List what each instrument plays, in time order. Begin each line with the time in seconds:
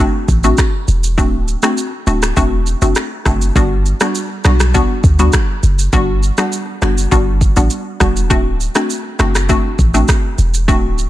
0.00 synth pluck A3 C4 D4 F#4
0.28 808-style bass A1, kick, shaker
0.44 synth pluck A3 C4 D4 F#4, shaker
0.57 finger snap, kick, cross-stick, shaker
0.88 808-style bass E1, shaker
1.04 shaker
1.18 808-style bass D1, synth pluck A3 C4 D4 F#4, kick, shaker
1.48 shaker
1.63 synth pluck A3 C4 D4 F#4, finger snap, cross-stick, shaker
1.77 shaker
2.07 808-style bass D1, synth pluck A3 C4 D4 F#4, shaker
2.22 finger snap, cross-stick, shaker
2.37 808-style bass E1, synth pluck A3 C4 D4 F#4, kick, shaker
2.66 shaker
2.82 808-style bass F#1, synth pluck A3 C4 D4 F#4, shaker
2.95 finger snap, cross-stick, shaker
3.26 808-style bass F#1, synth pluck A3 C4 D4 F#4, finger snap, kick, cross-stick, shaker
3.41 shaker
3.56 808-style bass G1, synth pluck G3 B3 D4 F#4, kick, shaker
3.86 shaker
4.00 synth pluck G3 B3 D4 F#4, finger snap, cross-stick, shaker
4.15 shaker
4.44 808-style bass B1, synth pluck G3 B3 D4 F#4, finger snap, cross-stick, shaker
4.60 finger snap, cross-stick, shaker
4.74 synth pluck G3 B3 D4 F#4, kick, shaker
5.04 808-style bass D2, kick, shaker
5.19 synth pluck G3 B3 D4 F#4, shaker
5.33 finger snap, kick, cross-stick, shaker
5.63 808-style bass F#1, shaker
5.79 shaker
5.93 808-style bass G1, synth pluck G3 B3 D4 F#4, kick, shaker
6.23 shaker
6.38 synth pluck G3 B3 D4 F#4, finger snap, cross-stick, shaker
6.52 shaker
6.82 808-style bass F#1, synth pluck G3 B3 D4 F#4, finger snap, cross-stick, shaker
6.98 shaker
7.11 808-style bass G1, synth pluck G3 B3 D4 F#4, kick, shaker
7.41 kick, shaker
7.56 808-style bass A1, synth pluck G3 B3 D4 F#4, shaker
7.70 shaker
8.00 808-style bass E1, synth pluck G3 B3 D4 F#4, finger snap, kick, cross-stick, shaker
8.16 shaker
8.30 808-style bass D1, synth pluck A3 C4 D4 F#4, kick, shaker
8.60 shaker
8.75 synth pluck A3 C4 D4 F#4, finger snap, cross-stick, shaker
8.90 shaker
9.19 808-style bass F#1, synth pluck A3 C4 D4 F#4, finger snap, cross-stick, shaker
9.35 finger snap, cross-stick, shaker
9.49 synth pluck A3 C4 D4 F#4, kick, shaker
9.79 808-style bass A1, kick, shaker
9.94 synth pluck A3 C4 D4 F#4, shaker
10.08 finger snap, kick, cross-stick, shaker
10.38 808-style bass E1, shaker
10.54 shaker
10.68 808-style bass D1, synth pluck A3 C4 D4 F#4, kick, shaker
10.98 shaker